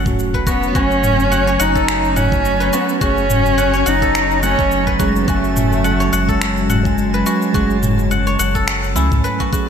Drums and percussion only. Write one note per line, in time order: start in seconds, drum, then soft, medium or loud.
0.06 kick loud
0.06 mid tom medium
0.06 shaker soft
0.19 shaker medium
0.34 kick medium
0.34 shaker soft
0.47 kick loud
0.47 shaker medium
0.63 shaker soft
0.75 kick loud
0.75 shaker soft
0.91 shaker soft
1.04 mid tom medium
1.04 shaker medium
1.20 shaker soft
1.32 shaker soft
1.48 shaker soft
1.60 shaker medium
1.76 kick medium
1.76 shaker soft
1.88 finger snap medium
1.88 shaker soft
2.04 shaker soft
2.17 mid tom medium
2.17 shaker medium
2.32 kick loud
2.32 shaker soft
2.45 shaker soft
2.61 shaker soft
2.73 shaker medium
2.89 shaker soft
3.01 kick loud
3.01 shaker soft
3.18 shaker soft
3.30 mid tom medium
3.30 shaker medium
3.46 shaker soft
3.58 shaker soft
3.74 shaker soft
3.87 shaker medium
4.02 kick medium
4.02 shaker soft
4.15 finger snap medium
4.15 shaker soft
4.31 shaker soft
4.43 shaker medium
4.59 kick loud
4.59 shaker soft
4.71 shaker soft
4.87 kick medium
4.87 shaker soft
5.00 kick loud
5.00 shaker medium
5.16 shaker soft
5.28 kick loud
5.28 shaker soft
5.44 shaker soft
5.57 mid tom medium
5.57 shaker medium
5.72 shaker soft
5.85 shaker soft
6.01 shaker soft
6.13 shaker medium
6.29 kick medium
6.29 shaker soft
6.42 finger snap medium
6.42 shaker soft
6.57 shaker soft
6.70 mid tom medium
6.70 shaker medium
6.85 kick loud
6.85 shaker soft
6.98 shaker soft
7.14 shaker soft
7.26 shaker medium
7.42 shaker soft
7.54 kick loud
7.54 shaker soft
7.70 shaker soft
7.83 mid tom medium
7.83 shaker medium
7.99 shaker soft
8.11 shaker soft
8.27 shaker soft
8.40 shaker medium
8.55 kick medium
8.55 shaker soft
8.68 finger snap medium
8.68 shaker soft
8.84 shaker soft
8.96 shaker medium
9.12 kick loud
9.12 mid tom medium
9.12 shaker soft
9.25 shaker soft
9.40 kick medium
9.40 shaker soft
9.53 kick loud
9.53 shaker medium